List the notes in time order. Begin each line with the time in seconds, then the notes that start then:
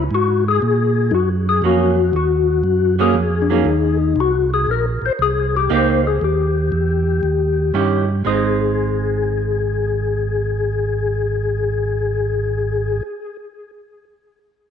0.11 G#2 F#4
0.48 G#4
0.62 A#2
1.11 F#2 D#4 F#4
1.49 G#4
1.62 F2 F#3 A#3 C#4 F#4
2.13 D#2 F#4
2.64 F#2
2.99 F#3 A#3 C#4 G#4
3.14 F2
3.42 D4
3.50 F#3 A#3 C#4 D#4
3.65 D#2
4.16 C2
4.20 F#4
4.54 G#4
4.67 A#1
4.71 A#4
5.02 A#1 C5
5.19 C2 G#4
5.57 G4
5.70 C#2 A#3 D#4 G4 C5
6.07 G#4
6.21 D#2 G4
6.72 E2
7.23 D#2
7.74 G2 D#3 C#4 E4 G4
8.25 G#1 G#3 C4 D#4 G#4